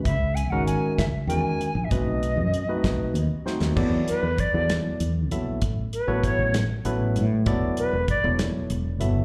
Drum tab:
CC |------------|------------|x-----------|------------|
HH |x-x-x-x-x-x-|x-x-x-x-x---|--x-x-x-x-x-|x-x-x-x-x-x-|
SD |------o-----|------o---oo|------o-----|------o-----|
BD |o-----o-----|o-----o-----|o---o-------|o---o-------|

CC |------------|
HH |x-x-x-x-x-x-|
SD |------o-----|
BD |o---o-------|